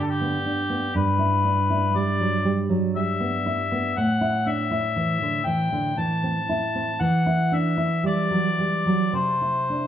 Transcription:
Already playing: G2 D3
0.04 A4
0.10 G4
0.21 B3
0.46 D4
0.70 B3
0.95 G2 B4
1.19 E4
1.45 D4
1.70 E4
1.95 G3 D5
2.20 F#3
2.45 G3
2.70 F#3
2.96 G3 E5
3.20 B3
3.46 E4
3.72 B3
3.97 A2 F#5
4.21 E4
4.46 D4 E5
4.71 E4
4.96 E3
5.22 D3
5.46 E3 G5
5.72 D3
5.98 E3 A5
6.23 C4
6.49 E4
6.75 C4
7.00 E3 F#5
7.26 E4
7.52 D4 E5
7.77 E4
8.03 G3 D5
8.31 F#3
8.59 G3
8.86 F#3
9.13 C3 C5
9.41 E4
9.70 D4

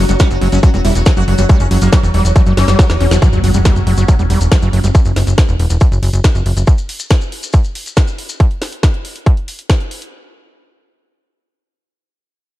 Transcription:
Already playing: F#3 F#4
0.09 F#1 F#3 G3, closed hi-hat, maracas
0.19 G3 C#4, kick, snare, closed hi-hat, maracas
0.31 F#1 F#3, closed hi-hat, maracas
0.41 F#1 F#3, open hi-hat
0.52 F#1 F#3 C#4, closed hi-hat, maracas
0.63 F#3, kick, closed hi-hat, maracas
0.74 E1 F#3 G3, closed hi-hat, maracas
0.85 E1 G3 E4, open hi-hat
0.95 E1 F#3, closed hi-hat, maracas
1.06 F#3, kick, snare, closed hi-hat, maracas
1.16 F#1 F#3 F#4, closed hi-hat, maracas
1.28 F#1 F#3, open hi-hat
1.38 F#1 F#3 G3, closed hi-hat, maracas
1.49 G3, kick, closed hi-hat, maracas
1.60 F#1 C#4, closed hi-hat, maracas
1.71 F#1 F#3, open hi-hat
1.81 F#1 F#3 A#3, closed hi-hat, maracas
1.92 F#3, kick, snare, closed hi-hat, maracas
2.03 E1 F#3 G3, closed hi-hat, maracas
2.14 E1 F#3 G3, open hi-hat
2.25 E1 F#3, closed hi-hat, maracas
2.36 F#3, kick, closed hi-hat, maracas
2.46 F#1 F#3, closed hi-hat, maracas
2.57 F#1 F#3 C#4, snare, open hi-hat
2.68 F#1 G3, snare, closed hi-hat, maracas
2.79 F#3, kick, snare, closed hi-hat, maracas
2.90 E1, snare, closed hi-hat, maracas
3.00 E1 C#4, open hi-hat
3.11 E1 F#3, snare, closed hi-hat, maracas
3.22 F#3 C#4, kick, closed hi-hat, impact, maracas
3.33 F#1 F#3, closed hi-hat, maracas
3.44 F#1 F#3, open hi-hat
3.54 F#1 G3, closed hi-hat, maracas
3.65 G3, kick, snare, closed hi-hat, maracas
3.76 F#1, closed hi-hat, maracas
3.87 F#1 F#3, open hi-hat
3.97 F#1 F#3, closed hi-hat, maracas
4.08 F#3, kick, closed hi-hat, maracas
4.19 E1 G3, closed hi-hat, maracas
4.30 E1 G3, open hi-hat
4.41 E1, closed hi-hat, maracas
4.52 F#3, kick, snare, closed hi-hat, maracas
4.62 F#1 F#3, closed hi-hat, maracas
4.73 F#1 F#3, open hi-hat
4.84 F#1 G3, closed hi-hat, maracas
4.95 kick, closed hi-hat, maracas
5.05 F#1, closed hi-hat, maracas
5.16 F#1, snare, open hi-hat
5.27 F#1, closed hi-hat, maracas
5.38 kick, snare, closed hi-hat, maracas
5.48 E1, closed hi-hat, maracas
5.59 E1, open hi-hat
5.70 E1, closed hi-hat, maracas
5.80 kick, closed hi-hat, maracas
5.92 F#1, closed hi-hat, maracas
6.03 F#1, open hi-hat
6.13 F#1, closed hi-hat, maracas
6.24 kick, snare, closed hi-hat, maracas
6.35 F#1, closed hi-hat, maracas
6.46 F#1, open hi-hat
6.57 F#1, closed hi-hat, maracas
6.67 kick, closed hi-hat, maracas
6.78 closed hi-hat, maracas
6.89 open hi-hat
6.99 closed hi-hat, maracas
7.10 kick, snare, closed hi-hat, maracas
7.21 closed hi-hat, maracas
7.32 open hi-hat
7.43 closed hi-hat, maracas
7.53 kick, closed hi-hat, maracas
7.64 closed hi-hat, maracas
7.75 open hi-hat
7.86 closed hi-hat, maracas
7.97 kick, snare, closed hi-hat, maracas
8.07 closed hi-hat, maracas
8.19 open hi-hat
8.29 closed hi-hat, maracas
8.40 kick, closed hi-hat
8.51 closed hi-hat
8.62 snare, open hi-hat
8.72 closed hi-hat
8.83 kick, snare, closed hi-hat
8.94 closed hi-hat
9.05 open hi-hat
9.16 closed hi-hat
9.26 kick, closed hi-hat
9.37 closed hi-hat
9.48 open hi-hat
9.59 closed hi-hat
9.70 kick, snare, closed hi-hat
9.80 closed hi-hat
9.91 open hi-hat
10.02 closed hi-hat

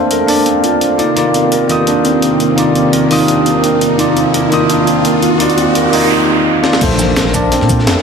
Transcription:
Already playing: A3 A#3 C4 D4 A4 A#4 C5 D5 F5 A5, riser
0.11 A#4, closed hi-hat
0.26 A#3 D4 D5 A5, open hi-hat
0.46 C4, closed hi-hat
0.64 F4, closed hi-hat
0.81 D4, closed hi-hat
0.98 C3 D#3 A#3 D#4 F4 G4 A#4 D5, closed hi-hat
1.15 A#3 D#4 F4 D5, closed hi-hat
1.34 C4, closed hi-hat
1.52 A#4, closed hi-hat
1.68 D#3 A#3 D#4 F4 D#6, closed hi-hat
1.87 D4, closed hi-hat
2.05 C4, closed hi-hat
2.22 A#3, closed hi-hat
2.40 A#3, closed hi-hat
2.56 A#3 D#4 F4 D5, closed hi-hat
2.75 C4, closed hi-hat
2.93 A#4, closed hi-hat
3.09 D#3 A#3 D#4 F4 D#6, open hi-hat
3.28 D4, closed hi-hat
3.46 C4, closed hi-hat
3.64 A#3, closed hi-hat
3.81 A#3, closed hi-hat
3.97 A#3 D#4 F4 D5, closed hi-hat
4.17 C4, closed hi-hat
4.34 A#4, closed hi-hat
4.50 D#3 A#3 D#4 F4 D#6, closed hi-hat
4.70 D4, closed hi-hat
4.87 C4, closed hi-hat
5.05 A#3, closed hi-hat
5.22 A#3, closed hi-hat
5.38 A#3 D#4 F4 D5, closed hi-hat, noise sweep
5.50 closed hi-hat
5.58 C4, closed hi-hat
5.75 A#4, closed hi-hat
5.91 A#3 D#4 F4 D#5, open hi-hat
6.63 A#3 D#4 F4 D5, snare
6.73 snare
6.80 A#1 A3 D4 A4 C5 F5 A5, kick, closed hi-hat, crash, impact
6.91 snare
6.99 A#3, snare, closed hi-hat, shaker
7.08 A#1
7.16 A#4, snare, closed hi-hat
7.26 snare
7.32 A#1 A#3 D4 D5 A5, kick, closed hi-hat, shaker
7.52 C4, snare, closed hi-hat
7.61 A#2, snare
7.69 A#3, kick, closed hi-hat, shaker
7.79 snare
7.87 F2 A3, snare, closed hi-hat
7.97 snare

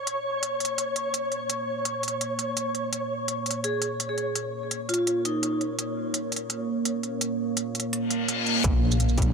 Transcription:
Already playing: A#3 A#4 C#5
0.07 closed hi-hat
0.43 closed hi-hat
0.60 closed hi-hat
0.65 closed hi-hat
0.78 closed hi-hat
0.96 closed hi-hat
1.14 closed hi-hat
1.32 closed hi-hat
1.50 closed hi-hat
1.85 closed hi-hat
2.03 closed hi-hat
2.08 closed hi-hat
2.21 closed hi-hat
2.39 closed hi-hat
2.57 closed hi-hat
2.75 closed hi-hat
2.93 closed hi-hat
3.28 closed hi-hat
3.46 closed hi-hat
3.51 closed hi-hat
3.64 G#4, closed hi-hat
3.82 closed hi-hat
4.00 closed hi-hat
4.09 G#4
4.18 closed hi-hat
4.35 closed hi-hat
4.71 closed hi-hat
4.89 F4, closed hi-hat
4.94 closed hi-hat
4.99 F4
5.07 closed hi-hat
5.25 D#4, closed hi-hat
5.43 closed hi-hat
5.61 closed hi-hat
5.79 closed hi-hat
6.14 closed hi-hat
6.32 closed hi-hat
6.36 closed hi-hat
6.50 closed hi-hat
6.85 closed hi-hat
7.03 closed hi-hat
7.21 closed hi-hat
7.57 closed hi-hat
7.75 closed hi-hat
7.80 closed hi-hat
7.93 closed hi-hat, reverse cymbal
8.11 closed hi-hat
8.28 closed hi-hat
8.46 closed hi-hat
8.64 A#1, kick, closed hi-hat, impact
8.91 shaker
9.00 closed hi-hat
9.09 shaker
9.18 kick, closed hi-hat
9.22 closed hi-hat

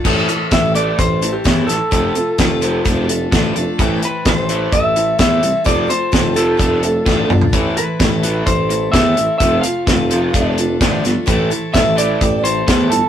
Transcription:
0.05 A1 A2 E3 A3 C4 E4 A4, kick, crash
0.28 A2 E3 A3 C4 E4 A4, closed hi-hat
0.51 A1 A2 E3 A3 C4 E4 A4 E5, kick, snare, closed hi-hat
0.75 A2 E3 A3 C4 E4 A4 D5, closed hi-hat
0.98 A1 A2 E3 A3 C4 E4 A4 C5, kick, closed hi-hat
1.21 A2 E3 A3 C4 E4 A4, closed hi-hat
1.33 G4
1.44 E2 A2 E3 A3 C4 E4 A4, kick, snare, closed hi-hat
1.67 A1 A2 E3 A3 C4 E4 A4, snare, closed hi-hat
1.91 F1 F2 C3 F3 A3 C4 F4 A4, kick, closed hi-hat
2.15 F2 C3 A3 C4 F4 A4, closed hi-hat
2.38 F1 F2 C3 F3 A3 C4 F4 A4, kick, snare, closed hi-hat
2.61 F2 C3 F3 A3 C4 F4 A4, closed hi-hat
2.85 F1 F3 A3 D4 F4 A4, kick, closed hi-hat
3.08 F3 A3 D4 F4 A4, closed hi-hat
3.32 A1 F2 D3 F3 A3 D4 F4 A4, kick, snare, closed hi-hat
3.56 F1 F3 A3 D4 F4 A4, closed hi-hat
3.79 A1 A2 E3 A3 C4 E4 A4, kick, closed hi-hat
4.02 A2 E3 A3 C4 E4 A4 B4, closed hi-hat
4.25 A1 A2 E3 A3 C4 E4 A4 B4, kick, snare, closed hi-hat
4.39 C5
4.49 A2 E3 A3 C4 E4 A4, closed hi-hat
4.72 A1 A2 E3 A3 C4 E4 A4 E5, kick, closed hi-hat
4.96 A2 E3 A3 C4 E4 A4, closed hi-hat
5.19 E2 A2 E3 A3 C4 E4 A4 E5, kick, snare, closed hi-hat
5.42 C2 A2 E3 A3 C4 E4 A4, closed hi-hat
5.64 F1 F2 C3 F3 A3 C4 F4 A4 D5, kick, closed hi-hat
5.87 F2 C3 A3 C4 F4 A4 C5, closed hi-hat
6.12 F1 F2 C3 F3 A3 C4 F4 A4, kick, snare, closed hi-hat
6.34 F2 C3 F3 A3 C4 F4 A4, closed hi-hat
6.57 F1 F3 A3 D4 F4 A4, kick, closed hi-hat
6.83 F3 A3 D4 F4 A4, closed hi-hat
7.06 A1 F2 D3 F3 A3 D4 F4 A4, kick, snare
7.29 G1 F3 A3 D4 F4 A4, mid tom
7.41 floor tom
7.53 A1 A2 E3 A3 C4 E4 A4, kick, closed hi-hat
7.76 A2 E3 A3 C4 E4 A4 B4, closed hi-hat
8.00 A1 A2 E3 A3 C4 E4 A4, kick, snare, closed hi-hat
8.23 A2 E3 A3 C4 E4 A4, closed hi-hat
8.46 A1 A2 E3 A3 C4 E4 A4 C5, kick, closed hi-hat
8.70 A2 E3 A3 C4 E4 A4, closed hi-hat
8.92 E2 A2 E3 A3 C4 E4 E5, kick, snare, closed hi-hat
8.96 A4
9.17 A1 A2 E3 A3 C4 E4 A4, closed hi-hat
9.38 F1 F2 C3 F3 A3 C4 F4 A4 E5, kick, closed hi-hat
9.61 F2 C3 F4 A4 F5, closed hi-hat
9.66 A3 C4
9.87 F1 F2 C3 F3 A3 C4 F4 A4, kick, snare, closed hi-hat
10.10 F2 C3 F3 A3 C4 F4 A4, closed hi-hat
10.33 F1 F3 A3 D4 F4 A4, kick, closed hi-hat
10.58 F3 A3 D4 F4 A4, closed hi-hat
10.80 A1 F2 D3 F3 A3 D4 F4 A4, kick, snare, closed hi-hat
11.04 G1 F3 A3 D4 F4 A4, snare, closed hi-hat
11.26 A1 A2 E3 A3 C4 E4 A4, kick, closed hi-hat
11.50 A2 E3 A3 C4 E4 A4, closed hi-hat
11.74 A1 A2 E3 A3 C4 E4 A4 E5, kick, snare, closed hi-hat
11.97 A2 E3 A3 C4 E4 A4 D5, closed hi-hat
12.20 A1 A2 E3 A3 C4 E4 A4, kick, closed hi-hat
12.44 A2 E3 A3 C4 E4 A4 C5, closed hi-hat
12.67 E2 A2 E3 A3 C4 E4 A4, kick, snare, closed hi-hat
12.90 G1 A2 E3 A3 C4 E4 A4, closed hi-hat

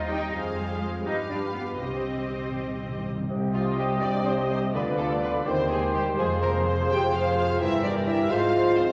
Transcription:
Already playing: D#2 D#3 C4 G4
0.09 G3 D#4 G4 D#5 G5
0.32 F2 G#4 C5 F5
0.57 G3 G#3
0.81 G#3 C4 F4
1.06 G2 D#4 G4 B4 F5
1.31 G3 D4
1.55 B3 F4
1.80 C2 C3 C4 G4 C5 D#5
1.88 C3
1.96 C3
2.05 G3
2.19 C3
2.27 C3 D#4
2.34 C3
2.42 C3
2.50 C3
2.55 C3 G3
2.65 C3
2.73 C3
2.79 C3 C4
2.89 C3
2.97 C3
3.04 C3 G3
3.13 C3
3.21 C3
3.29 C2 C3 C5 D#5 G5
3.53 F3 G3 F4 G4 D#5
3.78 G3 D#4 G4
4.01 C2 G3 D4 D5
4.26 C4 G4 C5 D#5
4.50 G3 C4 C5
4.74 D2 D3 B3 F4 B4 D5 F5
4.98 A3 B3 F4 A4 D5
5.22 B3 F4 B4
5.46 D#2 D#3 C4 G4 C5 G5
5.70 G3 G#3 G4 G#4 C5
5.94 G3 G4 C5
6.17 F1 F2 F3 G#3 G#4 C5 F5
6.41 C3 A#3 G#4 A#4 C5
6.66 C4 F4 C5
6.90 F1 F2 C3 G4 G5
7.13 G#3 F4 G#4 C5 F5
7.37 C3 F4 F5
7.60 G1 G2 E3 E4 G4 A#4 E5 G5
7.84 G3 D4 G4 A#4 D5
8.07 E4 A#4 E5
8.30 G#1 G#2 G#3 F4 G#4 C5 F5
8.54 F3 F4 C5
8.77 C4 C5

